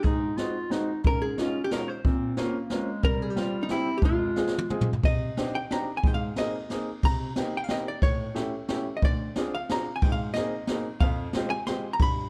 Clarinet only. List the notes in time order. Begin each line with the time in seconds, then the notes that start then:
0.06 D#4
0.37 F4
0.72 D#4
1.04 C#4
1.39 C#4
2.04 C4
2.38 A#3
2.73 G#3
3.04 G3
3.69 C4
4.01 G#3